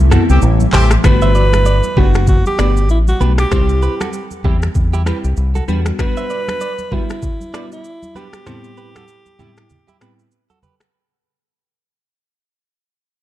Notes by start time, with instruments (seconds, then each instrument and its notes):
Already playing: fingered electric bass C2, ambient pad E3 G3 A3 E4
0.11 synth keys G3 B3 C4 E4, clean electric guitar F#4 A4, finger snap, cross-stick, mid tom, shaker
0.29 fingered electric bass C2, horn section E3 C4 G4, shaker
0.42 fingered electric bass A1, shaker
0.60 high conga, shaker
0.73 fingered electric bass A1, horn section E3 C4 G4, clean electric guitar A4 C5, clap, open hi-hat, high conga, low conga, shaker
0.91 finger snap, cross-stick, shaker
1.04 fingered electric bass G1, synth keys A3 B3 D4 F#4, alto saxophone B4, finger snap, kick, cross-stick, low conga, shaker
1.22 clean electric guitar C5 E5, shaker
1.35 clean electric guitar B4 D5, shaker
1.53 finger snap, cross-stick, high conga, shaker
1.66 clean electric guitar B4 D5, shaker
1.83 high conga, shaker
1.97 fingered electric bass F#1, synth keys A3 B3 D4 F#4, alto saxophone F#4, clean electric guitar G4 B4, kick, high conga, low conga
2.14 finger snap, cross-stick, shaker
2.27 alto saxophone F#4, kick, low conga, shaker
2.46 alto saxophone G4, high conga, shaker
2.59 fingered electric bass G1, synth keys A3 B3 D4 F#4, clean electric guitar B4 D5, finger snap, cross-stick, shaker
2.77 shaker
2.89 fingered electric bass A1, alto saxophone E4, shaker
3.08 alto saxophone F#4, high conga, shaker
3.20 fingered electric bass B1, synth keys A3 B3 D4 F#4, clean electric guitar G4 B4, high conga, shaker
3.38 alto saxophone G4, finger snap, cross-stick, shaker
3.51 fingered electric bass C2, synth keys G3 C4 E4 G4, clean electric guitar G4 C5, finger snap, kick, cross-stick, low conga, shaker
3.69 shaker
3.82 clean electric guitar G4 B4, shaker
4.01 clean electric guitar F#4 A4, finger snap, cross-stick, high conga, shaker
4.13 shaker
4.31 high conga, shaker
4.44 fingered electric bass E2, synth keys G3 C4 E4 G4, clean electric guitar E4 G4, kick, high conga, low conga
4.62 finger snap, cross-stick, shaker
4.75 fingered electric bass E2, kick, low conga, shaker
4.93 clean electric guitar E4 G4, high conga, shaker
5.06 synth keys G3 C4 E4 G4, clean electric guitar G4 B4, finger snap, cross-stick, shaker
5.24 fingered electric bass C2, shaker
5.37 fingered electric bass C2, shaker
5.55 clean electric guitar F#4 A4, high conga, shaker
5.68 fingered electric bass E2, synth keys G3 B3 D4 F#4, clean electric guitar G4 B4, high conga, shaker
5.86 finger snap, cross-stick, shaker
5.99 synth keys G3 B3 D4 F#4, alto saxophone B4, finger snap, kick, cross-stick, low conga, shaker
6.17 clean electric guitar C5 E5, shaker
6.30 clean electric guitar B4 D5, shaker
6.48 finger snap, cross-stick, high conga, shaker
6.61 clean electric guitar B4 D5, shaker
6.79 high conga, shaker
6.92 synth keys G3 B3 D4 F#4, alto saxophone E4, clean electric guitar G4 B4, kick, high conga, low conga
7.10 finger snap, cross-stick, shaker
7.22 kick, low conga, shaker
7.41 high conga, shaker
7.54 synth keys G3 B3 D4 F#4, clean electric guitar B4 D5, finger snap, cross-stick, shaker
7.72 alto saxophone E4, shaker
7.84 shaker
8.03 high conga, shaker
8.15 synth keys G3 B3 D4 F#4, clean electric guitar G4 B4, alto saxophone G4, high conga, shaker
8.33 finger snap, cross-stick, shaker
8.46 synth keys A2 G3 B3 C4 E4, clean electric guitar A4 C5, finger snap, cross-stick, low conga, shaker
8.64 shaker
8.77 clean electric guitar G4 B4, shaker
8.96 clean electric guitar F#4 A4, finger snap, cross-stick, high conga, shaker
9.08 shaker
9.26 high conga, shaker
9.39 synth keys A2 G3 B3 C4 E4, clean electric guitar E4 G4, high conga, low conga, shaker
9.57 finger snap, cross-stick, shaker
9.70 low conga, shaker
9.88 clean electric guitar E4 G4, high conga, shaker
10.01 synth keys A2 G3 B3 C4 E4, clean electric guitar G4 B4, finger snap, cross-stick, shaker
10.19 shaker
10.32 shaker
10.50 clean electric guitar F#4 A4, high conga, shaker
10.63 clean electric guitar G4 B4, high conga, low conga, shaker
10.80 finger snap, cross-stick, shaker